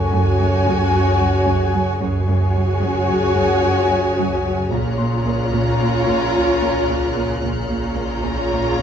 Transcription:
Already playing: double bass section F#1, synth drone C#2, cello section F#2, french horn section C#4 F#4, viola section F#4, harp A4 C#6, violin section C#5 G#5
0.12 cello section F#2
0.38 cello section F#2
0.66 cello section F#2
0.92 cello section F#2
1.19 cello section F#3
1.47 cello section F#2
1.73 cello section F#3
2.01 double bass section F#1, synth drone C#2, cello section F#2, french horn section C#4 F#4, viola section F#4, violin section C#5 G#5
2.29 cello section F#2
2.56 cello section F#3
2.82 cello section F#2
3.09 cello section F#2, harp G#4 G#5
3.36 cello section F#2
3.64 cello section F#2
3.90 cello section F#3
4.18 cello section F#2
4.46 cello section F#3
4.72 double bass section A#1, synth drone C#2, cello section A#2, french horn section C#4 F4, viola section F4, violin section C#5 A#5 F6 F#6
4.98 cello section A#2, harp C6
5.27 cello section A#3
5.53 cello section A#2
5.81 cello section A#2
6.08 cello section A#2
6.36 cello section A#2
6.62 cello section A#3
6.89 cello section A#2
7.15 cello section A#3
7.42 double bass section A#1, synth drone C#2, cello section A#2, french horn section C#4 F4, viola section F4, violin section C#5 A#5
7.70 cello section A#2
7.96 cello section A#3
8.17 violin section G6
8.24 cello section A#2
8.51 cello section A#2
8.78 cello section A#2

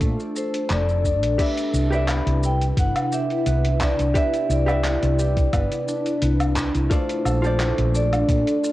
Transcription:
Already playing: harp D4 F4 A4, ambient pad D4 A4, hollow-body jazz guitar F4 A4 C5 D5
0.01 fretless electric bass A#2, harp A3, kick, closed hi-hat, shaker
0.20 shaker
0.35 harp A4, vibraphone C5, shaker
0.54 closed hi-hat, shaker
0.70 fretless electric bass F1, harp A3, vibraphone D5, clap, closed hi-hat, shaker
0.89 shaker
1.04 harp D4, vibraphone D5, kick, shaker
1.23 fretless electric bass A#1, closed hi-hat, shaker
1.38 ambient pad C3 D4 E4 B4, harp B3, hollow-body jazz guitar G4 B4 D5 E5, vibraphone E5, kick, closed hi-hat, crash, shaker
1.57 closed hi-hat, shaker
1.73 fretless electric bass C2, harp D4, shaker
1.90 hollow-body jazz guitar G4 B4 D5, shaker
1.95 hollow-body jazz guitar E5
2.08 harp B3, vibraphone B5, clap, closed hi-hat, low woodblock, shaker
2.26 fretless electric bass C2, closed hi-hat
2.43 harp E4, vibraphone G5, shaker
2.61 closed hi-hat, shaker
2.77 fretless electric bass G1, harp B3, vibraphone F#5, kick, closed hi-hat, shaker
2.96 closed hi-hat, low woodblock, shaker
3.12 harp G4, vibraphone E5, shaker
3.30 closed hi-hat, shaker
3.46 fretless electric bass C2, harp B3, closed hi-hat, shaker
3.65 closed hi-hat
3.81 harp D4, vibraphone D5, kick, clap, low woodblock, shaker
3.99 fretless electric bass C2, closed hi-hat, shaker
4.14 harp B3, hollow-body jazz guitar G4 B4 D5 E5, vibraphone E5, kick, closed hi-hat, shaker
4.34 closed hi-hat, shaker
4.49 fretless electric bass C2, harp E4, vibraphone D5, shaker
4.66 hollow-body jazz guitar G4 B4 D5, low woodblock, shaker
4.71 hollow-body jazz guitar E5
4.84 harp B3, vibraphone D5, clap, closed hi-hat, shaker
5.03 fretless electric bass C2, closed hi-hat, shaker
5.19 harp G4, shaker
5.37 kick, closed hi-hat, shaker
5.53 fretless electric bass G1, harp B3, kick, closed hi-hat, low woodblock, shaker
5.72 closed hi-hat, shaker
5.88 harp D4, shaker
6.06 closed hi-hat, shaker
6.22 fretless electric bass C2, harp B3, closed hi-hat, shaker
6.40 closed hi-hat, low woodblock, shaker
6.56 harp E4, kick, clap, shaker
6.75 fretless electric bass C2, closed hi-hat, shaker
6.90 harp A3, hollow-body jazz guitar F4 A4 C5 D5, ambient pad A4, vibraphone C5, kick, closed hi-hat, shaker
7.09 closed hi-hat, shaker
7.25 fretless electric bass A#1, harp A4, low woodblock, shaker
7.42 hollow-body jazz guitar F4 A4 C5, shaker
7.46 hollow-body jazz guitar D5
7.59 harp A3, clap, closed hi-hat, shaker
7.78 fretless electric bass A#1, closed hi-hat
7.94 harp D4, vibraphone D5, shaker
8.13 closed hi-hat, low woodblock, shaker
8.29 fretless electric bass A#2, harp A3, kick, closed hi-hat, shaker
8.47 closed hi-hat, shaker
8.63 harp F4, shaker

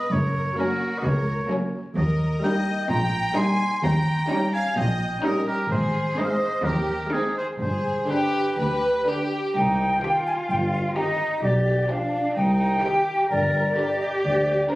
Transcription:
Already playing: violin section B4, oboe D#5
0.11 double bass section F#1, cello section F#2, violin section A#4, oboe C#5
0.58 viola section F#3 A#3, violin section C#4 F#4, oboe A#4
0.98 oboe D#5
1.04 double bass section C#2, cello section C#2, violin section A#4, oboe C#5
1.51 viola section F#3 A#3, violin section C#4
1.97 cello section D#2, double bass section D#2, violin section A#4, oboe D#5
2.43 viola section G3 A#3, violin section D#4 D#5, oboe G5
2.89 double bass section A#1, cello section A#2, violin section G5, oboe A#5
3.37 viola section G3 A#3, violin section D#4 G#5, oboe C6
3.83 double bass section D#2, cello section D#2, violin section G5, oboe A#5
4.30 viola section G3 C#4, violin section D#4
4.53 violin section F5, oboe G#5
4.77 double bass section A#1, cello section A#2, violin section D#5, oboe G5
5.24 viola section G3 C#4, violin section D#4 A#4, oboe D#5
5.47 violin section G4, oboe A#4
5.71 double bass section G#1, cello section G#2, violin section G#4, oboe C5
6.18 viola section G#3 C4, violin section D#4 C5, oboe D#5
6.24 oboe F5
6.32 oboe D#5
6.65 double bass section D#2, cello section D#2, violin section G4, oboe A#4
7.12 viola section G#3 C4, violin section D#4, oboe G#4
7.37 violin section G#4, oboe C5
7.61 double bass section G1, cello section G2, violin section G#4, oboe C5
8.10 viola section D3 D4, violin section G4, oboe B4
8.59 cello section D2, double bass section D2, violin section B4
9.07 viola section D3 D4, violin section G4
9.55 tuba C2, double bass section C2, cello section D#4, flute G5
10.02 viola section D#3, violin section C4 G4, cello section F4
10.27 flute G#5
10.50 double bass section G1, tuba G1, flute G5
10.74 flute F5
10.96 viola section D#3, violin section C4 G4, cello section D#4, flute D#5
11.43 double bass section B1, tuba B1, cello section G4, flute D5
11.90 viola section F3, violin section D4 G4, cello section D4, flute F5
12.36 tuba C2, double bass section C2, cello section D#4, flute G5
12.84 viola section D#3, violin section C4 G4, cello section G4
13.30 tuba G1, double bass section G1, cello section A#4, flute D5
13.77 viola section D3, violin section D4 A#4, cello section G4
14.00 flute D#5
14.24 double bass section D2, tuba D2, flute D5
14.70 viola section D3, violin section D4 A#4, cello section D4, flute C5

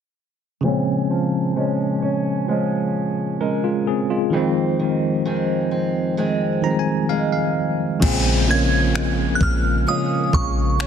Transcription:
0.61 steel-string acoustic guitar A#2 C#4, tine electric piano C#3 F3
0.65 tine electric piano G#3 C4
1.10 steel-string acoustic guitar F3
1.56 steel-string acoustic guitar F3 G#3 C#4
2.02 steel-string acoustic guitar C#4
2.48 steel-string acoustic guitar F3 G#3 C#4
3.40 steel-string acoustic guitar G#3, tine electric piano C#4 A#4
3.64 tine electric piano G#3 F4
3.87 tine electric piano C4 G#4
4.10 tine electric piano G#3 F4
4.30 steel-string acoustic guitar F2 C4, tine electric piano D#3 F3
4.34 tine electric piano G#3 C4
4.79 steel-string acoustic guitar D#3
5.25 steel-string acoustic guitar D#3 G#3 C4
5.71 steel-string acoustic guitar C4
6.17 steel-string acoustic guitar D#3 G#3 C4
6.62 tine electric piano D#3 F3 G3 C4 A#5
6.71 tine electric piano G#3
6.79 tine electric piano G#5
7.09 steel-string acoustic guitar G#3, tine electric piano F5
7.32 tine electric piano F5
8.00 808-style bass A#1, steel-string acoustic guitar A#2, tine electric piano C#3 F3 G#3 C4, ambient pad C#3 G#4 A#4 F5, kick, crash, downlifter
8.46 tine electric piano C#3 F3 G#3 A#3, steel-string acoustic guitar G#3 C#4 F4
8.51 synth bell G#6
8.94 steel-string acoustic guitar G#3, finger snap
9.35 synth bell F#6
9.41 808-style bass A#1, synth bell F6, kick
9.87 steel-string acoustic guitar G#3 C#4 F4, synth bell D#6
10.33 808-style bass A#1, synth bell C#6, kick
10.79 steel-string acoustic guitar C#4, finger snap

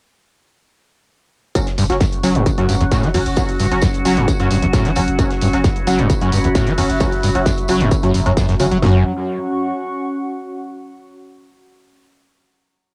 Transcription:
1.55 acid bass F#2, synth stab F#3 C#4 F#4, synth drone F#3 F#4, ambient pad C#4, kick, closed hi-hat, tambourine
1.66 snare, closed hi-hat
1.75 sub bass F#1, acid bass G2, ambient pad C#6, open hi-hat, tambourine
1.80 ambient pad F#4
1.90 sub bass F#1, synth stab F#3 C#4 F#4, snare, closed hi-hat
1.99 acid bass F#2, ambient pad F#5, kick, snare, closed hi-hat, tambourine
2.12 closed hi-hat
2.23 sub bass F#1, acid bass F#3, synth stab F#3 C#4 F#4, open hi-hat, tambourine
2.35 sub bass F#1, acid bass F#2, closed hi-hat
2.46 acid bass C#3, kick, closed hi-hat, tambourine
2.58 acid bass F#2, synth stab F#3 C#4 F#4, closed hi-hat
2.69 sub bass F#1, acid bass G2, open hi-hat, tambourine
2.81 sub bass F#1, acid bass E2, closed hi-hat
2.91 acid bass A2, synth stab F#3 C#4 F#4, kick, snare, closed hi-hat, tambourine
3.03 acid bass F#3, snare, closed hi-hat
3.14 sub bass F#1, acid bass E2, synth stab F#3 C#4 F#4, open hi-hat
3.26 sub bass F#1, closed hi-hat
3.36 acid bass F#2, synth stab F#3 C#4 F#4, kick, closed hi-hat, tambourine
3.49 closed hi-hat
3.59 sub bass F#1, acid bass G2, open hi-hat, tambourine
3.71 sub bass F#1, synth stab F#3 C#4 F#4, closed hi-hat
3.82 acid bass F#2, kick, snare, closed hi-hat, tambourine
3.94 closed hi-hat
4.05 sub bass F#1, synth stab F#3 C#4 F#4, acid bass F#3, open hi-hat, tambourine
4.17 sub bass F#1, acid bass F#2, snare, closed hi-hat
4.28 acid bass C#3, kick, closed hi-hat, tambourine
4.40 acid bass F#2, synth stab F#3 C#4 F#4, closed hi-hat
4.51 sub bass F#1, acid bass G2, open hi-hat, tambourine
4.62 sub bass F#1, acid bass E2, closed hi-hat
4.73 acid bass A2, synth stab F#3 C#4 F#4, kick, snare, closed hi-hat, tambourine
4.85 acid bass F#3, snare, closed hi-hat
4.96 sub bass F#1, acid bass E2, synth stab F#3 C#4 F#4, open hi-hat, tambourine
5.08 sub bass F#1, closed hi-hat
5.19 acid bass F#2, synth stab F#3 C#4 F#4, kick, closed hi-hat, tambourine
5.31 snare, closed hi-hat
5.40 sub bass F#1, acid bass G2, ambient pad B5, open hi-hat, tambourine
5.53 sub bass F#1, synth stab F#3 C#4 F#4, snare, closed hi-hat
5.64 acid bass F#2, kick, snare, closed hi-hat, tambourine
5.76 closed hi-hat
5.87 sub bass F#1, acid bass F#3, synth stab F#3 C#4 F#4, open hi-hat, tambourine
5.99 sub bass F#1, acid bass F#2, closed hi-hat
6.10 acid bass C#3, kick, closed hi-hat, tambourine
6.21 acid bass F#2, synth stab F#3 C#4 F#4, closed hi-hat
6.27 ambient pad E5
6.32 sub bass F#1, acid bass G2, open hi-hat, tambourine
6.44 sub bass F#1, acid bass E2, closed hi-hat
6.55 acid bass A2, synth stab F#3 C#4 F#4, kick, snare, closed hi-hat, tambourine
6.67 acid bass F#3, snare, closed hi-hat
6.78 sub bass F#1, acid bass E2, synth stab F#3 C#4 F#4, open hi-hat
6.90 sub bass F#1, closed hi-hat
7.00 acid bass F#2, synth stab F#3 C#4 F#4, kick, closed hi-hat, tambourine
7.12 closed hi-hat
7.23 sub bass F#1, acid bass G2, open hi-hat, tambourine
7.35 sub bass F#1, synth stab F#3 C#4 F#4, closed hi-hat
7.46 acid bass F#2, kick, snare, closed hi-hat, tambourine
7.58 closed hi-hat
7.68 sub bass F#1, acid bass F#3, synth stab F#3 C#4 F#4, open hi-hat, tambourine
7.80 sub bass F#1, acid bass F#2, snare, closed hi-hat
7.91 acid bass C#3, kick, closed hi-hat, tambourine
8.03 acid bass F#2, synth stab F#3 C#4 F#4, closed hi-hat
8.14 sub bass F#1, acid bass F#2, open hi-hat, tambourine
8.26 sub bass F#1, acid bass F#2, synth stab F#3 C#4 F#4, closed hi-hat
8.37 acid bass F#2, kick, snare, closed hi-hat, tambourine
8.49 acid bass F#2, snare, closed hi-hat
8.59 sub bass F#1, acid bass C#3, synth stab F#3 C#4 F#4, open hi-hat, tambourine
8.71 sub bass F#1, acid bass F#3, closed hi-hat
8.82 sub bass F#1, acid bass F#2, synth stab F#3 C#4 F#4, ambient pad C#4, snare, floor tom
8.90 ambient pad F#4
8.97 ambient pad F#5
9.03 ambient pad C#6

